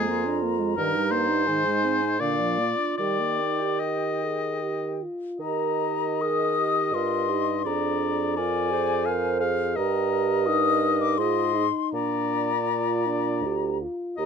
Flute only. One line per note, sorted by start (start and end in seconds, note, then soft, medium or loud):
0.00 1.48 A#5 soft
1.47 2.20 G#5 soft
2.20 2.69 F5 soft
2.99 5.03 G5 soft
5.41 6.23 A#5 medium
6.22 6.96 D#6 medium
6.94 7.68 C6 medium
7.67 8.39 A#5 medium
8.37 9.42 G#5 medium
9.77 10.48 A#5 medium
10.46 11.03 D#6 medium
11.01 11.19 D6 medium
11.18 11.93 C6 medium
11.94 13.77 A#5 medium
14.19 14.26 A#5 medium